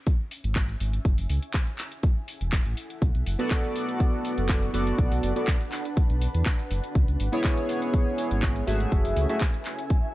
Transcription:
0.00 1.84 C#4 medium
0.00 1.84 E5 loud
0.00 3.02 G#5 medium
0.07 kick loud
0.07 closed hi-hat medium
0.31 open hi-hat loud
0.44 0.76 G#1 medium
0.44 closed hi-hat medium
0.55 kick loud
0.55 clap loud
0.55 closed hi-hat medium
0.69 closed hi-hat soft
0.80 0.99 G#1 loud
0.80 open hi-hat loud
0.94 closed hi-hat medium
1.05 1.15 F#1 medium
1.05 4.50 E4 loud
1.05 kick loud
1.05 closed hi-hat medium
1.18 1.27 F#1 medium
1.18 open hi-hat medium
1.25 7.74 F#5 medium
1.30 1.39 C#2 medium
1.30 open hi-hat loud
1.43 closed hi-hat soft
1.51 4.06 A4 medium
1.51 kick loud
1.51 clap loud
1.51 closed hi-hat medium
1.67 closed hi-hat soft
1.78 clap medium
1.78 open hi-hat loud
1.92 closed hi-hat medium
2.03 kick loud
2.03 closed hi-hat medium
2.28 open hi-hat loud
2.41 2.59 E1 medium
2.41 closed hi-hat soft
2.52 kick loud
2.52 clap loud
2.52 closed hi-hat medium
2.66 2.74 A1 loud
2.66 closed hi-hat soft
2.77 open hi-hat loud
2.90 closed hi-hat soft
3.02 3.12 B1 loud
3.02 6.95 D4 medium
3.02 kick loud
3.02 closed hi-hat medium
3.15 3.23 B1 medium
3.15 closed hi-hat soft
3.22 9.71 B4 medium
3.26 3.36 F#1 loud
3.26 open hi-hat loud
3.39 4.71 B3 medium
3.39 4.71 F#4 medium
3.39 4.71 A4 medium
3.39 4.71 D5 medium
3.39 closed hi-hat medium
3.51 kick loud
3.51 clap loud
3.51 closed hi-hat medium
3.64 closed hi-hat soft
3.76 open hi-hat loud
3.89 closed hi-hat soft
4.00 kick loud
4.00 closed hi-hat medium
4.08 6.95 A5 medium
4.25 open hi-hat loud
4.38 4.69 F#1 medium
4.38 closed hi-hat soft
4.49 kick loud
4.49 clap loud
4.49 closed hi-hat medium
4.62 closed hi-hat soft
4.73 4.93 F#1 medium
4.73 5.33 B3 medium
4.73 5.33 F#4 medium
4.73 5.33 A4 medium
4.73 5.33 D5 medium
4.73 open hi-hat loud
4.87 closed hi-hat soft
4.98 5.08 B1 loud
4.98 kick loud
4.98 closed hi-hat medium
5.11 5.20 B1 medium
5.11 open hi-hat medium
5.23 5.33 F#1 medium
5.23 open hi-hat loud
5.36 5.48 B3 medium
5.36 5.48 F#4 medium
5.36 5.48 A4 medium
5.36 5.48 D5 medium
5.36 closed hi-hat soft
5.47 kick loud
5.47 clap loud
5.47 closed hi-hat medium
5.61 closed hi-hat soft
5.72 clap medium
5.72 open hi-hat loud
5.85 closed hi-hat soft
5.97 kick loud
5.97 closed hi-hat medium
6.10 6.28 B1 medium
6.10 closed hi-hat soft
6.21 open hi-hat loud
6.34 6.43 E2 medium
6.34 closed hi-hat soft
6.46 kick loud
6.46 clap loud
6.46 closed hi-hat medium
6.59 closed hi-hat soft
6.71 6.80 F#1 loud
6.71 open hi-hat loud
6.84 closed hi-hat soft
6.95 7.05 C#2 loud
6.95 9.71 C#4 medium
6.95 kick loud
6.95 closed hi-hat medium
7.08 7.17 C#2 medium
7.08 closed hi-hat soft
7.20 7.30 G#1 medium
7.20 open hi-hat loud
7.32 8.64 B3 medium
7.32 8.64 E4 medium
7.32 8.65 G#4 medium
7.32 8.65 C#5 medium
7.32 closed hi-hat soft
7.44 kick loud
7.44 clap loud
7.44 closed hi-hat medium
7.57 closed hi-hat soft
7.66 10.14 E5 medium
7.66 open hi-hat loud
7.82 10.14 G#5 medium
7.82 closed hi-hat medium
7.94 kick loud
7.94 closed hi-hat medium
8.18 open hi-hat loud
8.31 8.63 G#1 medium
8.31 closed hi-hat soft
8.42 kick loud
8.42 clap loud
8.42 closed hi-hat medium
8.56 closed hi-hat soft
8.67 8.86 G#1 loud
8.67 9.26 A3 medium
8.67 9.26 F#4 medium
8.67 9.27 G#4 medium
8.67 9.27 E5 medium
8.67 open hi-hat loud
8.80 closed hi-hat soft
8.92 9.02 F#1 loud
8.92 10.14 F#4 medium
8.92 kick loud
8.92 closed hi-hat medium
9.00 10.14 A4 loud
9.05 9.14 F#1 medium
9.05 open hi-hat medium
9.16 9.26 C#2 loud
9.16 open hi-hat loud
9.29 9.42 A3 medium
9.29 9.42 F#4 medium
9.29 9.42 G#4 medium
9.29 9.42 E5 medium
9.29 closed hi-hat medium
9.41 kick loud
9.41 clap loud
9.41 closed hi-hat medium
9.54 closed hi-hat soft
9.65 clap medium
9.65 open hi-hat loud
9.79 closed hi-hat medium
9.90 kick loud
9.90 closed hi-hat medium

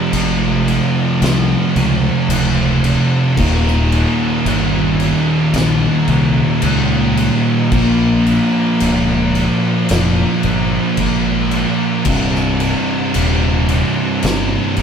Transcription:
0.00 0.13 F2 medium
0.00 3.34 F2 medium
0.00 0.13 C3 medium
0.00 3.35 C3 medium
0.00 0.13 F3 loud
0.00 3.36 F3 loud
0.12 0.78 G#1 medium
0.12 0.67 F2 loud
0.12 0.68 C3 loud
0.12 0.68 F3 loud
0.12 crash medium
0.68 1.21 F2 medium
0.68 1.21 C3 medium
0.68 1.22 F3 loud
0.68 crash medium
1.21 1.54 C2 loud
1.21 1.74 F2 loud
1.21 1.75 C3 loud
1.21 1.75 F3 loud
1.21 snare loud
1.21 crash medium
1.75 2.08 C#2 loud
1.75 2.30 F2 loud
1.75 2.30 C3 loud
1.75 2.31 F3 loud
1.75 crash medium
2.28 2.95 C#1 loud
2.28 2.82 F2 loud
2.28 2.82 C3 medium
2.28 2.83 F3 medium
2.28 crash loud
2.84 3.35 F2 medium
2.84 3.35 C3 loud
2.84 3.35 F3 loud
2.84 crash medium
3.37 4.04 D#1 loud
3.37 3.91 D#2 loud
3.37 3.91 A#2 loud
3.37 3.92 D#3 medium
3.37 kick loud
3.37 crash loud
3.67 snare soft
3.92 4.45 D#2 medium
3.92 4.46 A#2 loud
3.92 4.47 D#3 medium
3.92 crash medium
4.45 5.11 G1 medium
4.45 5.00 D#2 medium
4.45 5.01 A#2 medium
4.45 5.01 D#3 loud
4.45 crash medium
5.00 5.54 D#2 loud
5.00 5.55 A#2 loud
5.00 5.55 D#3 medium
5.00 crash medium
5.53 5.87 A#1 loud
5.53 6.09 D#2 loud
5.53 6.09 A#2 loud
5.53 6.09 D#3 loud
5.53 snare loud
5.53 crash medium
6.08 6.41 C2 medium
6.08 6.62 D#2 loud
6.08 6.63 A#2 loud
6.08 6.63 D#3 loud
6.08 crash medium
6.62 7.29 C#2 loud
6.62 7.18 D#2 medium
6.62 7.18 A#2 medium
6.62 7.19 D#3 loud
6.62 crash medium
7.17 7.70 D#2 medium
7.17 7.69 A#2 loud
7.17 7.70 D#3 loud
7.17 crash medium
7.71 8.38 A#1 loud
7.71 8.26 A#2 medium
7.71 8.26 F3 loud
7.71 8.26 A#3 loud
7.71 kick loud
7.71 crash medium
8.27 8.79 A#2 medium
8.27 8.79 F3 medium
8.27 8.80 A#3 loud
8.27 crash medium
8.80 9.47 C#1 medium
8.80 9.34 A#2 medium
8.80 9.34 F3 loud
8.80 9.35 A#3 loud
8.80 crash medium
9.35 9.88 A#2 loud
9.35 9.88 F3 medium
9.35 9.89 A#3 medium
9.35 crash medium
9.89 10.23 F1 loud
9.89 10.44 A#2 loud
9.89 10.44 F3 loud
9.89 10.45 A#3 loud
9.89 snare loud
9.89 crash medium
10.43 10.77 G1 loud
10.43 10.98 A#2 medium
10.43 10.98 F3 loud
10.43 10.98 A#3 loud
10.43 crash medium
10.97 11.64 G#1 loud
10.97 11.52 A#2 medium
10.97 11.53 F3 loud
10.97 11.53 A#3 loud
10.97 kick medium
10.97 crash medium
11.51 12.04 A#2 loud
11.51 12.04 F3 loud
11.51 12.04 A#3 loud
11.51 crash medium
12.05 12.72 C1 loud
12.05 12.60 C2 medium
12.05 12.60 G2 loud
12.05 12.61 C3 medium
12.05 kick loud
12.05 crash loud
12.35 snare soft
12.60 13.13 C2 medium
12.60 13.13 G2 medium
12.60 13.14 C3 medium
12.60 crash medium
13.14 13.81 D#1 medium
13.14 13.68 C2 loud
13.14 13.68 G2 loud
13.14 13.69 C3 loud
13.14 crash medium
13.69 14.23 C2 medium
13.69 14.23 G2 medium
13.69 14.23 C3 medium
13.69 crash medium
14.23 14.56 G1 medium
14.23 14.77 C2 loud
14.23 14.78 G2 loud
14.23 14.77 C3 loud
14.23 snare loud
14.23 crash medium
14.77 14.82 G#1 medium
14.77 14.82 C2 medium
14.77 14.82 G2 medium
14.77 14.82 C3 loud
14.77 crash medium

